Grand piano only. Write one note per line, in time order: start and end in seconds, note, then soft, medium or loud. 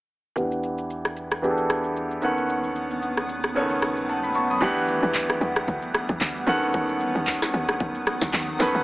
0.36 1.22 E3 medium
0.36 1.22 B3 medium
0.36 1.22 D4 medium
0.36 1.23 G4 medium
0.36 1.23 F#5 medium
1.42 2.22 E3 medium
1.42 2.21 B3 medium
1.42 2.23 D4 medium
1.42 2.23 G4 medium
1.42 1.51 G#4 medium
1.51 2.22 A4 medium
2.22 3.08 D#3 medium
2.22 3.08 B3 medium
2.22 3.09 C#4 medium
2.22 3.09 A4 medium
2.22 3.09 F#5 loud
3.55 3.62 C#3 medium
3.55 4.41 B3 medium
3.55 4.41 C#4 medium
3.55 4.42 A4 medium
3.55 4.42 C#5 medium
3.61 4.44 D#3 medium
4.09 4.23 F#5 medium
4.09 4.23 A5 medium
4.23 4.35 B5 medium
4.35 4.49 A5 medium
4.35 4.49 C#6 medium
4.50 4.76 B5 medium
4.50 4.75 D#6 medium
4.61 5.47 E3 medium
4.61 5.47 B3 medium
4.61 5.47 D4 medium
4.61 5.48 G4 medium
4.61 5.48 F#5 medium
6.46 7.33 D#3 medium
6.46 7.33 B3 medium
6.46 7.33 C#4 medium
6.46 7.33 A4 medium
6.46 7.34 F#5 loud
8.59 8.81 D#3 medium
8.59 8.81 B3 medium
8.59 8.82 C#4 medium
8.59 8.82 A4 medium
8.59 8.82 B4 loud